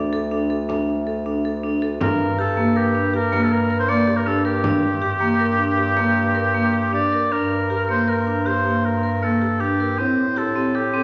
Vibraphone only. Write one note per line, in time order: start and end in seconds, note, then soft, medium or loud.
0.13 0.23 A4 medium
0.31 0.41 D4 medium
0.50 0.60 A4 medium
0.69 0.89 D4 medium
1.07 1.17 A4 medium
1.26 1.36 D4 medium
1.45 1.55 A4 medium
1.63 1.73 D4 medium
1.82 1.92 A4 medium
2.01 2.21 D4 medium
2.38 2.48 G4 medium
2.57 2.67 A#3 medium
2.76 2.86 A#4 medium
2.95 3.05 D4 medium
3.13 3.24 G4 medium
3.32 3.52 A#3 medium
3.70 3.80 A#4 medium
3.89 3.99 A#3 medium
4.07 4.17 G4 medium
4.26 4.36 D4 medium
4.45 4.55 A#4 medium
4.64 4.84 D4 medium
5.02 5.12 G4 medium
5.21 5.30 A#3 medium
5.39 5.49 A#4 medium
5.58 5.68 D4 medium
5.78 5.88 G4 medium
5.97 6.17 A#3 medium
6.35 6.45 A#4 medium
6.54 6.64 A#3 medium
6.73 6.84 G4 medium
6.93 7.03 D4 medium
7.12 7.23 A#4 medium
7.32 7.52 D4 medium
7.70 7.80 G4 medium
7.89 7.99 A#3 medium
8.08 8.18 A#4 medium
8.27 8.37 D4 medium
8.46 8.56 G4 medium
8.65 8.86 A#3 medium
9.03 9.13 A#4 medium
9.23 9.33 A#3 medium
9.42 9.52 G4 medium
9.61 9.71 D4 medium
9.80 9.90 A#4 medium
9.98 10.19 C4 medium
10.36 10.46 G4 medium
10.56 10.66 C4 medium
10.75 10.85 A4 medium
10.93 11.03 C4 medium